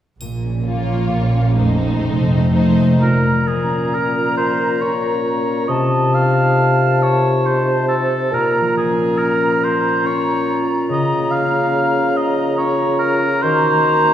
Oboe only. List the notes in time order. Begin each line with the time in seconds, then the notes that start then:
3.02 A#4
3.48 G#4
3.94 A#4
4.37 C5
4.82 C#5
5.68 D#5
6.14 F5
7.02 C#5
7.46 C5
7.88 A4
8.34 A#4
8.77 G#4
9.18 A#4
9.64 C5
10.06 C#5
10.91 D#5
11.31 F5
12.17 D#5
12.58 C#5
12.99 A#4
13.42 C5